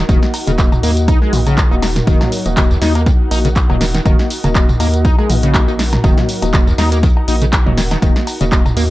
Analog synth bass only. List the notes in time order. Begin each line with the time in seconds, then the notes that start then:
0.09 D#1
0.47 D#1
0.83 D#2
1.33 A#1
1.71 D#1
2.07 D#1
2.46 D#1
2.82 D#2
3.31 A#1
3.70 D#1
4.06 D#1
4.44 D#1
4.80 D#2
5.30 A#1
5.68 A#1
6.04 D#1
6.42 D#1
6.78 D#2
7.28 A#1
7.66 D#1
8.02 D#1
8.41 D#1
8.77 D#2